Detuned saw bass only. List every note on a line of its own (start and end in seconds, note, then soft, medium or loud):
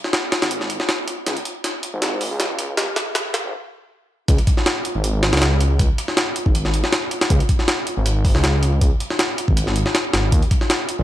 0.42 0.79 G#1 medium
1.27 1.36 C#2 loud
1.94 2.30 G#1 medium
2.31 2.76 C#2 loud
2.78 2.87 C#2 loud
3.44 3.53 G#1 medium
4.28 4.38 C#2 loud
4.95 5.31 G#1 medium
5.33 5.78 C#2 loud
5.79 5.89 C#2 loud
6.46 6.82 G#1 medium
7.30 7.39 C#2 loud
7.97 8.33 G#1 medium
8.35 8.80 C#2 loud
8.81 8.91 C#2 loud
9.48 9.84 G#1 medium
10.14 10.31 G#1 medium
10.32 10.41 D#2 loud
10.99 11.03 A#1 medium